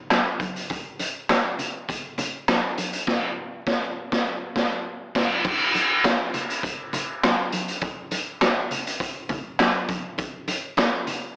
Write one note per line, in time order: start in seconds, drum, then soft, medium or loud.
0.10 snare loud
0.10 clap loud
0.10 closed hi-hat medium
0.10 high conga medium
0.40 kick medium
0.40 closed hi-hat medium
0.40 high conga medium
0.56 closed hi-hat medium
0.70 kick loud
0.70 closed hi-hat medium
0.70 muted conga medium
0.99 closed hi-hat medium
0.99 muted conga medium
1.29 snare loud
1.29 clap medium
1.29 closed hi-hat medium
1.29 high conga medium
1.59 closed hi-hat medium
1.59 low conga medium
1.89 kick medium
1.89 closed hi-hat loud
1.89 muted conga soft
2.18 closed hi-hat medium
2.18 muted conga medium
2.18 low conga medium
2.48 snare loud
2.48 clap loud
2.48 closed hi-hat medium
2.48 high conga medium
2.78 closed hi-hat medium
2.78 high conga medium
2.93 closed hi-hat medium
3.07 kick loud
3.07 snare loud
3.07 crash medium
3.67 kick loud
3.67 snare loud
4.12 kick loud
4.12 snare loud
4.56 kick loud
4.56 snare loud
5.15 kick loud
5.15 snare loud
5.15 crash medium
5.45 kick loud
5.45 crash loud
5.45 muted conga medium
5.75 closed hi-hat medium
5.75 muted conga medium
6.04 snare loud
6.04 clap medium
6.04 closed hi-hat medium
6.04 high conga medium
6.34 closed hi-hat medium
6.34 low conga medium
6.50 closed hi-hat medium
6.63 kick medium
6.63 closed hi-hat loud
6.63 muted conga soft
6.93 closed hi-hat medium
6.93 muted conga medium
6.93 low conga medium
7.23 snare loud
7.23 clap loud
7.23 closed hi-hat medium
7.23 high conga medium
7.52 closed hi-hat loud
7.52 high conga medium
7.68 closed hi-hat medium
7.82 kick loud
7.82 closed hi-hat medium
7.82 muted conga medium
8.11 closed hi-hat medium
8.11 muted conga medium
8.41 snare loud
8.41 clap medium
8.41 closed hi-hat medium
8.41 high conga medium
8.71 closed hi-hat medium
8.71 low conga medium
8.87 closed hi-hat medium
9.00 kick loud
9.00 closed hi-hat loud
9.29 kick loud
9.29 closed hi-hat medium
9.29 muted conga medium
9.29 low conga medium
9.59 snare loud
9.59 clap loud
9.59 closed hi-hat medium
9.59 high conga medium
9.89 kick loud
9.89 closed hi-hat medium
9.89 high conga medium
10.18 kick loud
10.18 closed hi-hat medium
10.18 muted conga medium
10.48 closed hi-hat medium
10.48 muted conga medium
10.77 snare loud
10.77 clap loud
10.77 closed hi-hat medium
10.77 high conga medium
11.07 closed hi-hat medium
11.07 low conga medium